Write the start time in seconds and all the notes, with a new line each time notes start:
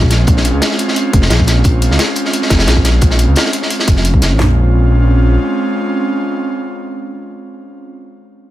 Already playing: A#1 G#3 C4 C#4 F4
0.02 kick
0.10 snare, closed hi-hat
0.27 A#1, kick, closed hi-hat
0.37 snare
0.45 closed hi-hat
0.54 C#2
0.62 snare, closed hi-hat
0.71 snare
0.79 closed hi-hat
0.88 snare
0.96 closed hi-hat
1.13 F1, kick, closed hi-hat
1.22 snare
1.30 A#1, snare, closed hi-hat
1.40 kick
1.47 snare, closed hi-hat
1.64 A#1, kick, closed hi-hat
1.82 closed hi-hat
1.91 C#2, snare
1.99 snare, closed hi-hat
2.16 closed hi-hat
2.25 snare
2.33 closed hi-hat
2.42 snare
2.49 F1, kick, snare, closed hi-hat
2.59 snare, closed hi-hat
2.67 A#1, snare, closed hi-hat
2.77 kick
2.85 snare, closed hi-hat
3.01 A#1, kick, closed hi-hat
3.11 snare
3.19 closed hi-hat
3.28 C#2
3.36 snare, closed hi-hat
3.45 snare
3.53 closed hi-hat
3.62 snare
3.70 closed hi-hat
3.80 snare
3.88 F1, kick, closed hi-hat
3.96 snare
4.05 closed hi-hat
4.14 C#2, kick
4.22 F1, snare, closed hi-hat
4.31 A#1
4.39 A#1 G#3 C4 C#4 F4, snare, floor tom